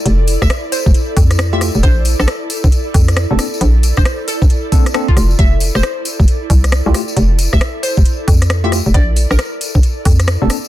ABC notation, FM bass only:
X:1
M:4/4
L:1/16
Q:"Swing 16ths" 1/4=135
K:F
V:1 name="FM bass" clef=bass
F,,,3 F,,, z3 F,,, z2 F,,4- F,, F,,, | B,,,3 B,,, z3 B,,, z2 F,,3 F,,, z2 | B,,,3 B,,, z3 B,,, z6 F,,,2 | F,,,3 F,,, z3 F,,, z2 C,,3 C,, z2 |
F,,,3 F,,, z3 F,,, z2 F,,4- F,, F,,, | B,,,3 B,,, z3 B,,, z2 F,,3 F,,, z2 |]